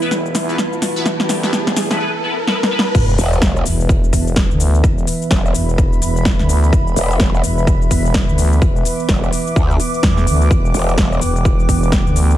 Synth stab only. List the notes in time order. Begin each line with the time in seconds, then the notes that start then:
0.02 B3 E4 B4
0.49 B3 E4 B4
0.96 B3 E4 B4
1.44 B3 E4 B4
1.91 B3 E4 B4
2.00 B3 E4 B4
2.24 B3 E4 B4
2.48 B3 E4 B4
2.71 B3 E4 B4